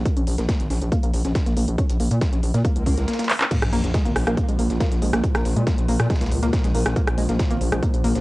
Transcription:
0.06 kick, closed hi-hat
0.17 analog synth bass A#1, synth arpeggio sound C#4, closed hi-hat
0.27 analog synth bass A#1, closed hi-hat, open hi-hat
0.38 analog synth bass A#1, synth arpeggio sound A#3, snare, closed hi-hat
0.49 synth arpeggio sound A#3, kick, snare, closed hi-hat
0.60 analog synth bass G#1, closed hi-hat
0.70 analog synth bass A#1, synth arpeggio sound C#4, snare, closed hi-hat, open hi-hat
0.82 analog synth bass A#1, closed hi-hat
0.92 synth arpeggio sound A#3, kick, closed hi-hat
1.03 analog synth bass A#1, synth arpeggio sound A#3, closed hi-hat
1.14 analog synth bass A#1, closed hi-hat, open hi-hat
1.25 analog synth bass A#1, synth arpeggio sound C#4, snare, closed hi-hat
1.35 kick, snare, closed hi-hat
1.46 analog synth bass A#1, synth arpeggio sound A#3, snare, closed hi-hat
1.57 analog synth bass A#1, synth arpeggio sound A#3, closed hi-hat, open hi-hat
1.68 analog synth bass A#1, closed hi-hat
1.78 synth arpeggio sound C#4, kick, closed hi-hat
1.89 analog synth bass A#1, closed hi-hat
2.00 analog synth bass A#1, synth arpeggio sound A#3, open hi-hat
2.11 analog synth bass A#2, synth arpeggio sound A#3, closed hi-hat
2.21 kick, snare, closed hi-hat
2.33 analog synth bass A#1, synth arpeggio sound C#4, closed hi-hat
2.43 analog synth bass A#1, closed hi-hat, open hi-hat
2.54 analog synth bass A#2, synth arpeggio sound A#3, snare, closed hi-hat
2.65 synth arpeggio sound A#3, kick, closed hi-hat, swell
2.76 analog synth bass C#2, closed hi-hat
2.86 analog synth bass C#2, synth arpeggio sound C#4, kick, closed hi-hat, open hi-hat
2.97 analog synth bass C#2, snare, closed hi-hat
3.08 synth arpeggio sound A#3, snare, closed hi-hat
3.13 snare, closed hi-hat
3.19 synth arpeggio sound A#3, snare, closed hi-hat
3.24 snare, closed hi-hat
3.29 clap, closed hi-hat, open hi-hat
3.41 synth arpeggio sound C#4, snare, clap, closed hi-hat
3.51 synth drone A#2 F3, synth arpeggio sound A#3, kick, closed hi-hat, crash, sub drop
3.62 analog synth bass A#1, cross-stick, closed hi-hat
3.73 analog synth bass A#1, synth arpeggio sound A#3, closed hi-hat, open hi-hat
3.84 analog synth bass A#1, snare, closed hi-hat
3.94 synth arpeggio sound G#3, kick, snare, closed hi-hat
4.05 analog synth bass G#1, synth arpeggio sound A#3, closed hi-hat
4.16 analog synth bass A#1, cross-stick, snare, closed hi-hat, open hi-hat
4.27 analog synth bass A#1, synth arpeggio sound A#3, cross-stick, closed hi-hat
4.37 kick, closed hi-hat
4.48 analog synth bass A#1, synth arpeggio sound G#3, closed hi-hat
4.59 analog synth bass A#1, synth arpeggio sound A#3, closed hi-hat, open hi-hat
4.70 analog synth bass A#1, snare, closed hi-hat
4.80 synth arpeggio sound A#3, kick, snare, closed hi-hat
4.92 analog synth bass A#1, snare, closed hi-hat
5.02 analog synth bass A#1, synth arpeggio sound G#3, closed hi-hat, open hi-hat
5.13 analog synth bass A#1, synth arpeggio sound A#3, cross-stick, snare, closed hi-hat
5.24 kick, closed hi-hat
5.35 analog synth bass A#1, synth arpeggio sound A#3, cross-stick, snare, closed hi-hat
5.45 analog synth bass A#1, snare, closed hi-hat, open hi-hat
5.56 analog synth bass A#2, synth arpeggio sound G#3, closed hi-hat
5.67 synth arpeggio sound A#3, kick, snare, closed hi-hat
5.78 analog synth bass A#1, closed hi-hat
5.88 analog synth bass A#1, synth arpeggio sound A#3, closed hi-hat, open hi-hat
6.00 analog synth bass A#2, cross-stick, snare, closed hi-hat
6.10 synth arpeggio sound G#3, kick, snare, closed hi-hat
6.16 snare, closed hi-hat
6.21 analog synth bass C#2, synth arpeggio sound A#3, snare, closed hi-hat
6.26 snare, closed hi-hat
6.31 analog synth bass C#2, closed hi-hat, open hi-hat
6.43 analog synth bass C#2, synth arpeggio sound A#3, snare, closed hi-hat
6.53 kick, snare, closed hi-hat
6.64 analog synth bass A#1, synth arpeggio sound G#3, snare, closed hi-hat
6.75 analog synth bass A#1, synth arpeggio sound A#3, closed hi-hat, open hi-hat
6.86 analog synth bass A#1, cross-stick, snare, closed hi-hat
6.96 synth arpeggio sound A#3, kick, closed hi-hat
7.07 analog synth bass A#1, cross-stick, closed hi-hat
7.18 analog synth bass A#1, synth arpeggio sound G#3, closed hi-hat, open hi-hat
7.29 analog synth bass A#1, synth arpeggio sound A#3, snare, closed hi-hat
7.39 kick, snare, closed hi-hat
7.51 analog synth bass G#1, synth arpeggio sound A#3, closed hi-hat
7.61 analog synth bass A#1, closed hi-hat, open hi-hat
7.72 analog synth bass A#1, synth arpeggio sound G#3, cross-stick, closed hi-hat
7.83 synth arpeggio sound A#3, kick, closed hi-hat
7.94 analog synth bass A#1, closed hi-hat
8.04 analog synth bass A#1, synth arpeggio sound A#3, closed hi-hat, open hi-hat
8.15 analog synth bass A#1, snare, closed hi-hat

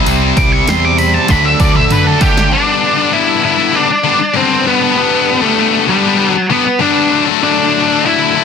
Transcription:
Already playing: distorted electric guitar C3 G3 C4 E4
0.07 picked electric bass C2, open hi-hat
0.37 picked electric bass C2, lead electric guitar D6, kick, open hi-hat
0.53 lead electric guitar C#6
0.67 picked electric bass E2, distorted electric guitar C3 G3 C4 E4, lead electric guitar C6, snare, open hi-hat
0.85 lead electric guitar D6
0.98 lead electric guitar B5, open hi-hat
1.14 lead electric guitar A5
1.28 picked electric bass D2, distorted electric guitar D3 F#3 A3 D4, lead electric guitar B5, kick, open hi-hat
1.33 distorted electric guitar D4
1.46 lead electric guitar E5
1.60 picked electric bass D2, lead electric guitar D5, kick, open hi-hat
1.75 lead electric guitar E5, mid tom
1.91 picked electric bass D3, lead electric guitar B4, mid tom, open hi-hat
2.07 lead electric guitar A4
2.21 picked electric bass D3, distorted electric guitar D3 F#3 A3 D4, lead electric guitar G4, kick, open hi-hat
2.37 snare
2.51 distorted electric guitar G2 D3 G3 B3 D4, lead electric guitar D4
2.97 distorted electric guitar G3 B3 D4
3.11 distorted electric guitar G2 D3 G3 B3 D4, lead electric guitar E4
3.42 distorted electric guitar D3 G3 B3 D4, lead electric guitar E4
3.58 distorted electric guitar G3 B3 D4
3.75 lead electric guitar D4
3.89 muted distorted electric guitar stroke
4.04 distorted electric guitar D3 G3 B3 D4
4.20 muted distorted electric guitar stroke
4.34 distorted electric guitar G2 D3 G3 B3 D4, lead electric guitar C4
4.65 distorted electric guitar D3 G3 B3 D4, lead electric guitar B3
4.81 distorted electric guitar G3 B3 D4
4.95 distorted electric guitar G2 D3 G3 B3 D4
5.41 distorted electric guitar G3 B3 D4, lead electric guitar A3
5.56 distorted electric guitar G2 D3 G3 B3 D4
5.88 distorted electric guitar D3 G3 B3 D4, lead electric guitar G3
6.03 distorted electric guitar G3 B3 D4
6.29 lead electric guitar F#3
6.35 muted distorted electric guitar stroke
6.50 distorted electric guitar D3 G3 B3 D4, lead electric guitar B3
6.65 muted distorted electric guitar stroke
6.79 distorted electric guitar G2 D3 G3 B3 D4, lead electric guitar D4
7.10 distorted electric guitar D3 F#3 A3 D4
7.26 distorted electric guitar F#3 A3 D4
7.42 distorted electric guitar D3 F#3 A3 D4, lead electric guitar D4
7.88 distorted electric guitar F#3 A3 D4
8.03 distorted electric guitar D3 F#3 A3 D4, lead electric guitar E4
8.33 distorted electric guitar D3 F#3 A3 D4

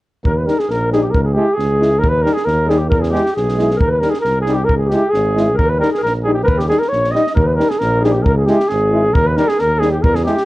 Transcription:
0.24 tuba D#2, flugelhorn A#4, clarinet A#4, kick
0.37 flugelhorn B4, clarinet B4
0.46 trombone G3, euphonium D#4, clarinet A#4, flugelhorn A#4, snare
0.57 clarinet G#4, flugelhorn G#4, snare
0.68 tuba A#1, clarinet A#4, flugelhorn A#4, snare
0.92 trombone G3, euphonium D#4, flugelhorn G#4, clarinet G#4, snare
1.02 clarinet G4, flugelhorn G4
1.10 tuba C#2, flugelhorn A#4, clarinet A#4, kick
1.23 flugelhorn G#4 A#4, clarinet A#4
1.33 trombone G#3, flugelhorn G4, clarinet G4
1.38 euphonium E4
1.54 tuba C#2, flugelhorn G#4, clarinet G#4
1.60 snare
1.80 trombone G#3, euphonium E4, snare
1.99 tuba D#2, flugelhorn A#4, clarinet A#4
2.04 kick
2.09 flugelhorn B4, clarinet B4
2.21 trombone G3, clarinet A#4, flugelhorn A#4
2.26 euphonium D#4, snare
2.33 clarinet G#4, flugelhorn G#4, snare
2.45 tuba D#2, clarinet A#4, flugelhorn A#4, snare
2.66 trombone G3, euphonium D#4, clarinet G#4, flugelhorn G#4
2.70 snare
2.77 clarinet G4, flugelhorn G4
2.90 tuba E2, clarinet A#4, flugelhorn A#4, kick
3.00 clarinet G#4, flugelhorn G#4, snare
3.10 trombone G#3, clarinet G4, flugelhorn G4
3.15 euphonium E4, snare
3.26 snare
3.32 clarinet G#4
3.37 tuba B1, flugelhorn G#4, snare
3.48 snare
3.57 trombone G#3, euphonium E4, snare
3.71 snare
3.76 clarinet A#4, flugelhorn A#4
3.80 tuba D#2, kick
3.87 clarinet B4
3.91 flugelhorn B4
3.98 trombone G3, clarinet A#4, flugelhorn A#4
4.02 euphonium D#4, snare
4.10 flugelhorn G#4, clarinet G#4, snare
4.20 flugelhorn A#4, clarinet A#4
4.25 tuba C2, snare
4.41 flugelhorn G#4, clarinet G#4
4.46 trombone G3, euphonium D#4, snare
4.53 clarinet G4, flugelhorn G4
4.64 flugelhorn A#4, clarinet A#4
4.69 tuba C#2, kick
4.76 clarinet G#4, flugelhorn G#4
4.86 clarinet G4, flugelhorn G4
4.91 trombone G#3, euphonium E4, snare
5.08 clarinet G#4, flugelhorn G#4
5.14 tuba G#1, snare
5.35 trombone G#3, euphonium E4, snare
5.54 tuba D#2, clarinet A#4, flugelhorn A#4
5.59 kick
5.66 clarinet B4, flugelhorn B4
5.77 trombone G3, clarinet A#4, flugelhorn A#4
5.83 euphonium D#4, snare
5.87 clarinet G#4
5.92 flugelhorn G#4, snare
5.98 clarinet A#4
6.03 tuba A#1, flugelhorn A#4, snare
6.24 trombone G3, euphonium D#4, flugelhorn G#4, clarinet G#4
6.34 flugelhorn G4, clarinet G4
6.43 flugelhorn A#4 B4, clarinet A#4 B4
6.47 tuba D#2, kick
6.57 flugelhorn G4, clarinet G4, snare
6.68 trombone G3, euphonium D#4, flugelhorn G#4, clarinet G#4, snare
6.79 flugelhorn A#4, clarinet A#4, snare
6.89 tuba A#1, flugelhorn C#5, clarinet C#5, snare
7.04 snare
7.11 trombone G3, flugelhorn D#5, clarinet D#5
7.15 euphonium D#4, snare
7.27 snare
7.34 tuba D#2, clarinet A#4, flugelhorn A#4, kick
7.44 clarinet B4, flugelhorn B4
7.56 trombone G3, flugelhorn A#4, clarinet A#4
7.60 euphonium D#4, snare
7.69 clarinet G#4, flugelhorn G#4, snare
7.79 tuba A#1, flugelhorn A#4, clarinet A#4, snare
8.01 trombone G3, euphonium D#4, clarinet G#4, snare
8.05 flugelhorn G#4
8.12 clarinet G4, flugelhorn G4
8.22 tuba C#2, clarinet A#4, flugelhorn A#4, kick
8.34 clarinet G#4, flugelhorn G#4
8.46 trombone G#3, euphonium E4, clarinet G4, flugelhorn G4, snare
8.60 snare
8.68 tuba G#1, flugelhorn G#4, clarinet G#4, snare
8.92 trombone G#3, euphonium E4
9.13 tuba D#2, clarinet A#4, flugelhorn A#4, kick
9.25 clarinet B4, flugelhorn B4
9.36 trombone G3, euphonium D#4, clarinet A#4, flugelhorn A#4, snare
9.47 clarinet G#4, flugelhorn G#4, snare
9.57 tuba D#2, clarinet A#4, flugelhorn A#4, snare
9.79 trombone G3, euphonium D#4, flugelhorn G#4, clarinet G#4, snare
9.91 clarinet G4, flugelhorn G4
10.02 tuba E2, clarinet A#4, flugelhorn A#4, kick
10.13 clarinet G#4, flugelhorn G#4, snare
10.24 trombone G#3, euphonium E4, clarinet G4, flugelhorn G4, snare
10.38 snare

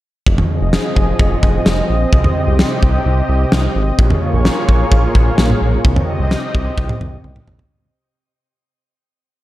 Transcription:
0.27 analog synth bass F1, analog synth pad F3 C4 G#4 D#5, kick
0.38 mid tom
0.61 analog synth bass F1
0.73 snare
0.96 analog synth bass F1, kick
1.19 analog synth bass F1, kick
1.43 analog synth bass F1, kick
1.66 analog synth bass F1, snare
1.89 analog synth bass A#1
2.13 analog synth bass C2, analog synth pad C3 G4, kick
2.24 mid tom
2.48 analog synth bass C2
2.59 snare
2.83 analog synth bass C2, kick
3.06 analog synth bass C2
3.29 analog synth bass C2
3.52 analog synth bass C2, snare
3.75 analog synth bass G#1
3.99 analog synth bass A#1, analog synth pad A#3 F4 G#4 C#5, kick
4.10 mid tom
4.34 analog synth bass A#1
4.45 snare
4.69 analog synth bass A#1, kick
4.92 analog synth bass A#1, kick
5.15 analog synth bass A#1, kick
5.38 analog synth bass A#1, snare
5.50 mid tom
5.61 analog synth bass A#1
5.85 analog synth bass C2, analog synth pad C3 C4 G4 D#5, kick
5.96 mid tom
6.20 analog synth bass C2
6.31 snare
6.55 analog synth bass C2, kick
6.78 analog synth bass C2, kick
6.89 mid tom
7.01 analog synth bass C2, mid tom
7.24 analog synth bass C2, high tom
7.36 mid tom
7.47 analog synth bass A#1, mid tom
7.59 floor tom

